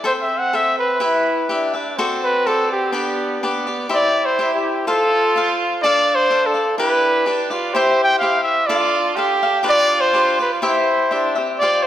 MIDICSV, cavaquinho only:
0, 0, Header, 1, 2, 480
1, 0, Start_track
1, 0, Key_signature, 1, "major"
1, 0, Tempo, 481541
1, 49, Time_signature, 2, 2, 24, 8
1, 3885, Key_signature, 0, "major"
1, 11830, End_track
2, 0, Start_track
2, 0, Title_t, "Cavaquinho"
2, 0, Program_c, 0, 24
2, 38, Note_on_c, 0, 69, 73
2, 48, Note_on_c, 0, 79, 77
2, 49, Note_on_c, 0, 72, 71
2, 49, Note_on_c, 0, 76, 78
2, 518, Note_off_c, 0, 69, 0
2, 520, Note_off_c, 0, 72, 0
2, 528, Note_off_c, 0, 79, 0
2, 529, Note_off_c, 0, 76, 0
2, 530, Note_on_c, 0, 69, 51
2, 532, Note_on_c, 0, 72, 58
2, 540, Note_on_c, 0, 79, 53
2, 544, Note_on_c, 0, 76, 54
2, 993, Note_off_c, 0, 69, 0
2, 997, Note_off_c, 0, 72, 0
2, 997, Note_off_c, 0, 76, 0
2, 997, Note_on_c, 0, 64, 77
2, 1001, Note_on_c, 0, 67, 63
2, 1005, Note_off_c, 0, 79, 0
2, 1009, Note_on_c, 0, 71, 74
2, 1009, Note_on_c, 0, 76, 71
2, 1475, Note_off_c, 0, 67, 0
2, 1482, Note_off_c, 0, 64, 0
2, 1487, Note_off_c, 0, 71, 0
2, 1487, Note_on_c, 0, 67, 66
2, 1488, Note_off_c, 0, 76, 0
2, 1493, Note_on_c, 0, 64, 58
2, 1501, Note_on_c, 0, 76, 67
2, 1504, Note_on_c, 0, 71, 57
2, 1717, Note_off_c, 0, 76, 0
2, 1728, Note_off_c, 0, 71, 0
2, 1729, Note_on_c, 0, 76, 45
2, 1732, Note_off_c, 0, 67, 0
2, 1735, Note_off_c, 0, 64, 0
2, 1740, Note_on_c, 0, 71, 51
2, 1751, Note_on_c, 0, 67, 40
2, 1963, Note_off_c, 0, 76, 0
2, 1968, Note_off_c, 0, 71, 0
2, 1974, Note_off_c, 0, 67, 0
2, 1979, Note_on_c, 0, 69, 76
2, 1979, Note_on_c, 0, 72, 91
2, 1983, Note_on_c, 0, 66, 86
2, 1994, Note_on_c, 0, 74, 86
2, 2445, Note_off_c, 0, 69, 0
2, 2446, Note_off_c, 0, 66, 0
2, 2449, Note_off_c, 0, 72, 0
2, 2457, Note_off_c, 0, 74, 0
2, 2457, Note_on_c, 0, 69, 51
2, 2458, Note_on_c, 0, 66, 52
2, 2460, Note_on_c, 0, 72, 63
2, 2477, Note_on_c, 0, 74, 53
2, 2911, Note_off_c, 0, 66, 0
2, 2915, Note_on_c, 0, 62, 68
2, 2919, Note_off_c, 0, 72, 0
2, 2923, Note_off_c, 0, 74, 0
2, 2923, Note_on_c, 0, 71, 77
2, 2928, Note_off_c, 0, 69, 0
2, 2932, Note_on_c, 0, 67, 67
2, 2935, Note_on_c, 0, 74, 83
2, 3398, Note_off_c, 0, 62, 0
2, 3402, Note_off_c, 0, 71, 0
2, 3406, Note_off_c, 0, 67, 0
2, 3408, Note_off_c, 0, 74, 0
2, 3418, Note_on_c, 0, 62, 57
2, 3422, Note_on_c, 0, 71, 64
2, 3426, Note_on_c, 0, 67, 57
2, 3435, Note_on_c, 0, 74, 61
2, 3644, Note_off_c, 0, 74, 0
2, 3656, Note_off_c, 0, 71, 0
2, 3656, Note_on_c, 0, 74, 44
2, 3658, Note_off_c, 0, 62, 0
2, 3658, Note_off_c, 0, 67, 0
2, 3668, Note_on_c, 0, 71, 37
2, 3670, Note_on_c, 0, 67, 34
2, 3868, Note_off_c, 0, 67, 0
2, 3880, Note_on_c, 0, 67, 74
2, 3883, Note_on_c, 0, 64, 68
2, 3886, Note_off_c, 0, 74, 0
2, 3887, Note_off_c, 0, 71, 0
2, 3890, Note_on_c, 0, 76, 76
2, 3891, Note_on_c, 0, 72, 70
2, 4362, Note_off_c, 0, 67, 0
2, 4363, Note_off_c, 0, 64, 0
2, 4369, Note_off_c, 0, 76, 0
2, 4370, Note_off_c, 0, 72, 0
2, 4374, Note_on_c, 0, 67, 59
2, 4375, Note_on_c, 0, 64, 56
2, 4385, Note_on_c, 0, 76, 55
2, 4394, Note_on_c, 0, 72, 60
2, 4851, Note_off_c, 0, 64, 0
2, 4851, Note_off_c, 0, 67, 0
2, 4856, Note_off_c, 0, 76, 0
2, 4856, Note_on_c, 0, 65, 68
2, 4861, Note_off_c, 0, 72, 0
2, 4862, Note_on_c, 0, 69, 69
2, 4863, Note_on_c, 0, 77, 85
2, 4871, Note_on_c, 0, 72, 68
2, 5330, Note_off_c, 0, 65, 0
2, 5333, Note_off_c, 0, 69, 0
2, 5333, Note_off_c, 0, 77, 0
2, 5337, Note_off_c, 0, 72, 0
2, 5340, Note_on_c, 0, 65, 53
2, 5355, Note_on_c, 0, 69, 58
2, 5355, Note_on_c, 0, 72, 64
2, 5358, Note_on_c, 0, 77, 65
2, 5810, Note_off_c, 0, 65, 0
2, 5814, Note_off_c, 0, 69, 0
2, 5817, Note_off_c, 0, 72, 0
2, 5818, Note_on_c, 0, 62, 79
2, 5819, Note_off_c, 0, 77, 0
2, 5826, Note_on_c, 0, 69, 70
2, 5832, Note_on_c, 0, 74, 80
2, 5839, Note_on_c, 0, 77, 86
2, 6271, Note_off_c, 0, 62, 0
2, 6273, Note_off_c, 0, 69, 0
2, 6282, Note_off_c, 0, 77, 0
2, 6283, Note_on_c, 0, 62, 58
2, 6284, Note_off_c, 0, 74, 0
2, 6285, Note_on_c, 0, 69, 60
2, 6293, Note_on_c, 0, 77, 58
2, 6295, Note_on_c, 0, 74, 61
2, 6505, Note_off_c, 0, 77, 0
2, 6510, Note_off_c, 0, 74, 0
2, 6517, Note_on_c, 0, 77, 39
2, 6521, Note_off_c, 0, 69, 0
2, 6522, Note_on_c, 0, 74, 40
2, 6525, Note_off_c, 0, 62, 0
2, 6533, Note_on_c, 0, 69, 34
2, 6752, Note_off_c, 0, 77, 0
2, 6755, Note_off_c, 0, 74, 0
2, 6758, Note_on_c, 0, 62, 69
2, 6760, Note_off_c, 0, 69, 0
2, 6772, Note_on_c, 0, 71, 78
2, 6774, Note_on_c, 0, 67, 83
2, 6774, Note_on_c, 0, 74, 68
2, 7224, Note_off_c, 0, 67, 0
2, 7226, Note_off_c, 0, 62, 0
2, 7236, Note_on_c, 0, 67, 54
2, 7237, Note_off_c, 0, 71, 0
2, 7238, Note_on_c, 0, 62, 54
2, 7244, Note_off_c, 0, 74, 0
2, 7249, Note_on_c, 0, 71, 54
2, 7254, Note_on_c, 0, 74, 65
2, 7467, Note_off_c, 0, 74, 0
2, 7477, Note_off_c, 0, 71, 0
2, 7479, Note_on_c, 0, 74, 47
2, 7482, Note_off_c, 0, 67, 0
2, 7484, Note_off_c, 0, 62, 0
2, 7489, Note_on_c, 0, 71, 50
2, 7503, Note_on_c, 0, 67, 41
2, 7715, Note_off_c, 0, 74, 0
2, 7718, Note_off_c, 0, 67, 0
2, 7720, Note_off_c, 0, 71, 0
2, 7722, Note_on_c, 0, 64, 77
2, 7730, Note_on_c, 0, 67, 75
2, 7734, Note_on_c, 0, 76, 75
2, 7735, Note_on_c, 0, 72, 77
2, 8176, Note_off_c, 0, 64, 0
2, 8187, Note_off_c, 0, 72, 0
2, 8188, Note_off_c, 0, 67, 0
2, 8188, Note_on_c, 0, 64, 58
2, 8189, Note_off_c, 0, 76, 0
2, 8199, Note_on_c, 0, 72, 59
2, 8200, Note_on_c, 0, 67, 54
2, 8201, Note_on_c, 0, 76, 50
2, 8662, Note_off_c, 0, 64, 0
2, 8662, Note_off_c, 0, 67, 0
2, 8666, Note_off_c, 0, 72, 0
2, 8666, Note_on_c, 0, 62, 85
2, 8666, Note_on_c, 0, 69, 62
2, 8667, Note_off_c, 0, 76, 0
2, 8670, Note_on_c, 0, 74, 90
2, 8671, Note_on_c, 0, 77, 84
2, 9124, Note_off_c, 0, 62, 0
2, 9130, Note_off_c, 0, 69, 0
2, 9136, Note_on_c, 0, 62, 58
2, 9137, Note_off_c, 0, 74, 0
2, 9142, Note_on_c, 0, 69, 52
2, 9143, Note_off_c, 0, 77, 0
2, 9149, Note_on_c, 0, 74, 47
2, 9155, Note_on_c, 0, 77, 64
2, 9384, Note_off_c, 0, 77, 0
2, 9386, Note_off_c, 0, 74, 0
2, 9392, Note_off_c, 0, 62, 0
2, 9395, Note_off_c, 0, 69, 0
2, 9396, Note_on_c, 0, 77, 51
2, 9398, Note_on_c, 0, 74, 41
2, 9413, Note_on_c, 0, 69, 42
2, 9594, Note_off_c, 0, 69, 0
2, 9594, Note_off_c, 0, 74, 0
2, 9598, Note_on_c, 0, 67, 66
2, 9602, Note_off_c, 0, 77, 0
2, 9604, Note_on_c, 0, 62, 72
2, 9606, Note_on_c, 0, 74, 72
2, 9610, Note_on_c, 0, 71, 88
2, 10088, Note_off_c, 0, 62, 0
2, 10095, Note_off_c, 0, 71, 0
2, 10099, Note_off_c, 0, 74, 0
2, 10100, Note_on_c, 0, 62, 55
2, 10107, Note_on_c, 0, 71, 65
2, 10109, Note_off_c, 0, 67, 0
2, 10112, Note_on_c, 0, 74, 52
2, 10113, Note_on_c, 0, 67, 60
2, 10343, Note_off_c, 0, 74, 0
2, 10353, Note_off_c, 0, 62, 0
2, 10355, Note_on_c, 0, 74, 44
2, 10357, Note_off_c, 0, 71, 0
2, 10360, Note_off_c, 0, 67, 0
2, 10369, Note_on_c, 0, 71, 41
2, 10382, Note_on_c, 0, 67, 34
2, 10581, Note_off_c, 0, 67, 0
2, 10585, Note_on_c, 0, 64, 67
2, 10589, Note_off_c, 0, 74, 0
2, 10593, Note_on_c, 0, 67, 80
2, 10593, Note_on_c, 0, 76, 80
2, 10597, Note_off_c, 0, 71, 0
2, 10601, Note_on_c, 0, 72, 74
2, 11061, Note_off_c, 0, 64, 0
2, 11070, Note_off_c, 0, 67, 0
2, 11070, Note_off_c, 0, 76, 0
2, 11072, Note_off_c, 0, 72, 0
2, 11073, Note_on_c, 0, 64, 55
2, 11082, Note_on_c, 0, 67, 44
2, 11082, Note_on_c, 0, 76, 54
2, 11084, Note_on_c, 0, 72, 55
2, 11305, Note_off_c, 0, 76, 0
2, 11312, Note_off_c, 0, 72, 0
2, 11317, Note_on_c, 0, 76, 49
2, 11324, Note_off_c, 0, 64, 0
2, 11324, Note_on_c, 0, 72, 48
2, 11328, Note_off_c, 0, 67, 0
2, 11338, Note_on_c, 0, 67, 43
2, 11557, Note_off_c, 0, 76, 0
2, 11561, Note_off_c, 0, 72, 0
2, 11568, Note_off_c, 0, 67, 0
2, 11576, Note_on_c, 0, 65, 61
2, 11588, Note_on_c, 0, 77, 73
2, 11589, Note_on_c, 0, 67, 73
2, 11595, Note_on_c, 0, 72, 75
2, 11830, Note_off_c, 0, 65, 0
2, 11830, Note_off_c, 0, 67, 0
2, 11830, Note_off_c, 0, 72, 0
2, 11830, Note_off_c, 0, 77, 0
2, 11830, End_track
0, 0, End_of_file